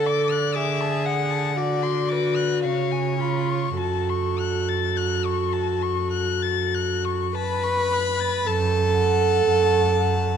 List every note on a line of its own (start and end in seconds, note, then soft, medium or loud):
0.00 2.66 D3 medium
0.00 0.56 A4 medium
0.06 0.57 D5 medium
0.06 0.33 D6 soft
0.31 0.56 F#6 soft
0.54 1.58 G#4 medium
0.54 1.07 E5 medium
0.54 0.82 D6 soft
0.80 1.07 A5 soft
1.05 1.58 F#5 medium
1.05 1.32 F#5 soft
1.30 1.55 A5 soft
1.56 3.19 F#4 medium
1.56 2.12 D5 medium
1.56 1.84 F#5 soft
1.83 2.10 C6 soft
2.09 2.65 B4 medium
2.09 2.38 D6 soft
2.36 2.63 F#6 soft
2.63 3.78 C#3 soft
2.63 3.78 C#5 soft
2.63 2.93 F5 soft
2.92 3.22 G#5 soft
3.19 3.77 F4 medium
3.19 3.50 B5 soft
3.49 3.79 C#6 soft
3.77 8.23 F#2 medium
3.77 7.31 F#4 medium
3.77 7.31 A4 medium
3.77 4.11 A5 soft
4.10 4.41 C#6 soft
4.40 4.70 F#6 soft
4.68 4.98 A6 soft
4.97 5.26 F#6 soft
5.25 5.55 C#6 soft
5.53 5.84 A5 soft
5.82 6.12 C#6 soft
6.12 6.44 F#6 soft
6.42 6.76 A6 soft
6.74 7.06 F#6 soft
7.05 7.37 C#6 soft
7.35 8.48 B4 medium
7.35 7.65 A5 soft
7.35 8.48 B5 medium
7.63 7.95 C#6 soft
7.93 8.22 F#6 soft
8.20 8.47 A6 soft
8.46 9.35 F#2 medium
8.46 10.37 A4 medium
8.46 10.37 A5 medium
8.97 9.95 F#5 medium
9.47 10.34 F#2 medium
9.97 10.37 F#5 soft